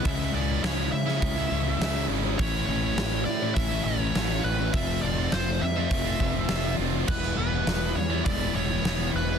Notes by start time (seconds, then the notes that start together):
0.05 C#2 C#3 G#3 C#4 E4 E5, kick, open hi-hat
0.33 C#2 C#3 G#3 C#4 E4 D5
0.48 G#3 C#4 E4
0.63 C#2 C#3 G#3 C#4 E4 C#5, snare, open hi-hat
0.77 G#3 C#4 E4
0.92 C#3 E5, muted distorted electric guitar stroke
1.06 G#3 C#4 E4, snare
1.22 C#2, kick, open hi-hat
1.36 G#3 C#4 E4
1.51 C#2 C#3 G#3 C#4 E4
1.65 G#3 C#4 E4
1.80 C#2 C#3 G#3 C#4 E4, snare, open hi-hat
1.95 G#3 C#4 E4
2.09 G#1 C#3 G#3 C#4 E4
2.24 G#3 C#4 E4
2.38 A1 A2 E3 A3 C#4 C#5, kick, open hi-hat
2.42 E4
2.67 A1 E3 A3 C#5
2.71 C#4 E4
2.83 A3 C#4 E4
2.97 A1 A2 E3 A3 C#4 E4, snare, open hi-hat
3.11 A3 C#4 E4
3.25 A2 D5, muted distorted electric guitar stroke
3.40 A3 C#4 E4
3.55 A1 E5, kick, open hi-hat
3.69 A3 C#4 E4
3.84 A1 E3 A3 C#4 E4 C#5
3.99 A3 C#4 E4
4.14 A1 A2 E3 A3 C#4 E4, snare, open hi-hat
4.29 A3 C#4 E4
4.43 A1 E3 A3 C#4 E4 B4
4.58 A3 C#4 E4
4.72 F1 F3 A3 C4 F4 E5, kick, open hi-hat
5.02 F1 F3 A3 C4 F4 D5
5.18 A3 C4 F4
5.32 F1 F3 A3 C4 F4 C5, snare, open hi-hat
5.46 A3 C4 F4
5.61 F2 E5, muted distorted electric guitar stroke
5.77 A3 C4 F4
5.91 F1, kick, open hi-hat
6.05 A3 C4 F4
6.20 F1 F3 A3 C4 F4, kick
6.34 A3 C4 F4
6.49 F1 F3 A3 C4 F4, snare, open hi-hat
6.64 A3 C4 F4
6.78 F1 F3 A3 C4 F4
6.92 A3 C4 F4
7.07 E1 E3 G3 B3 E4 B4, kick, crash
7.23 snare
7.36 E1 E3 G3 B3 E4 B4
7.52 G3 B3 E4
7.66 E1 E3 G3 B3 E4, snare, open hi-hat
7.81 G3 B3 E4
7.95 E2 C#5, muted distorted electric guitar stroke
8.10 G3 B3 E4
8.25 E1 D5, kick, open hi-hat
8.40 G3 B3 E4
8.54 E1 E3 G3 B3 E4 C#5
8.70 G3 B3 E4
8.83 E1 E3 G3 B3 E4, snare, open hi-hat
8.99 G3 B3 E4
9.13 E1 E3 G3 B3 E4 B4
9.29 G3 B3 E4